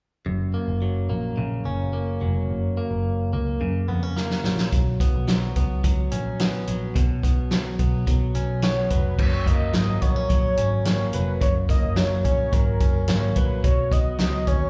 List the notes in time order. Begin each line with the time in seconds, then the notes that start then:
0.26 F#1 F#2
0.54 A#3
0.68 F#1
0.82 F#3
1.10 A#1 A#3
1.37 A#1 C#3
1.65 F#1 C#4
1.93 A#3
2.21 F1 F#3
2.49 F#1
2.77 A#3
2.91 F#1
3.33 C#2 A#3
3.61 F#2 C#3
3.88 F2 B3
4.03 C#4
4.17 A#3, snare
4.30 snare
4.44 A#1 F#3, snare
4.58 snare
4.72 B1, kick, closed hi-hat
5.00 B3, kick, closed hi-hat
5.15 B1
5.28 F#3, snare, closed hi-hat
5.56 C#2 B3, kick, closed hi-hat
5.84 C#2 F#3, kick, closed hi-hat
6.11 A#1 C#4, closed hi-hat
6.39 B3, snare, closed hi-hat
6.67 A#1 F#3, closed hi-hat
6.95 B1 B2, kick, closed hi-hat
7.23 B3, kick, closed hi-hat
7.51 F#3, snare, closed hi-hat
7.79 B1 B3, kick, closed hi-hat
8.07 B2 F#3, kick, closed hi-hat
8.35 B1 C#4, closed hi-hat
8.62 B3 C#5, snare, closed hi-hat
8.90 F1 F#3 B4, kick, closed hi-hat
9.19 F#1 F#2 C#5, kick, crash
9.46 A#3 D#5, kick, closed hi-hat
9.73 G#1 F#3 D#5, snare, closed hi-hat
10.01 A#1 B3 C#5, kick, closed hi-hat
10.16 C#4
10.29 A#1 F#3 C#5, kick, closed hi-hat
10.57 G#1 C#4, closed hi-hat
10.85 A#3 C#5, snare, closed hi-hat
11.13 F1 F#3 B4, closed hi-hat
11.41 F#1 F#2 C#5, kick, closed hi-hat
11.69 A#3 D#5, kick, closed hi-hat
11.83 F#1
11.96 F#3 C#5, snare, closed hi-hat
12.25 A#1 C#4 C#5, kick, closed hi-hat
12.53 G#1 F#3 A#4, kick, closed hi-hat
12.80 F#1 C#4, kick, closed hi-hat
13.08 G#1 A#3 C#5, snare, closed hi-hat
13.36 A#1 F#3 B4, kick, closed hi-hat
13.64 B1 B2 C#5, kick, closed hi-hat
13.92 B3 D#5, kick, closed hi-hat
14.19 C#2 F#3 D#5, snare, closed hi-hat
14.47 D#2 C#4 C#5, kick, closed hi-hat